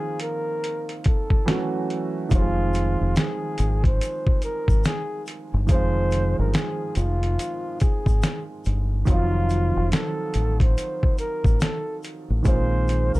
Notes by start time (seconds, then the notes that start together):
Already playing: D#3 F3 A#3 C4 F4 G#4
0.20 A#4, closed hi-hat
0.64 closed hi-hat
0.89 closed hi-hat
1.04 A4, kick, closed hi-hat
1.30 kick
1.46 E3 F#3 A3 C#4, snare, closed hi-hat
1.50 F#4
1.90 closed hi-hat
2.29 F1 D#3 F3, kick, closed hi-hat, shaker
2.33 G3 C4 F4
2.37 G#3 F4
2.74 closed hi-hat, shaker
3.01 F1
3.16 G#4, snare, closed hi-hat, shaker
3.58 G#1, closed hi-hat, shaker
3.84 C5, kick, closed hi-hat
4.01 closed hi-hat, shaker
4.27 kick
4.42 A#4, closed hi-hat, shaker
4.68 G#1, kick, shaker
4.84 G#4, snare, closed hi-hat, shaker
5.27 closed hi-hat, shaker
5.54 G1
5.67 F1 D#3 F3 C5, kick, closed hi-hat, shaker
5.71 G#3 C4 F4
6.11 closed hi-hat, shaker
6.39 G1 A#4
6.54 G#4, snare, closed hi-hat, shaker
6.95 F1 F4, closed hi-hat, shaker
7.23 closed hi-hat
7.39 closed hi-hat, shaker
7.80 G#4, kick, closed hi-hat, shaker
8.06 G#1, kick, shaker
8.22 snare, closed hi-hat, shaker
8.65 G1, closed hi-hat, shaker
9.05 F1 D#3 F#3 F4, kick, closed hi-hat, shaker
9.09 F3 C4
9.14 F4
9.50 closed hi-hat, shaker
9.76 F1
9.92 A4, snare, closed hi-hat, shaker
10.34 A1, closed hi-hat, shaker
10.60 C5, kick, closed hi-hat
10.78 closed hi-hat, shaker
11.03 kick
11.18 A#4, closed hi-hat, shaker
11.44 A1, kick, shaker
11.60 A4, snare, closed hi-hat, shaker
12.03 closed hi-hat, shaker
12.30 A1
12.43 A#1 D#3 G#3 C5, kick, closed hi-hat, shaker
12.47 A#3 C4
12.51 F4
12.88 closed hi-hat, shaker
13.15 C2 A#4, shaker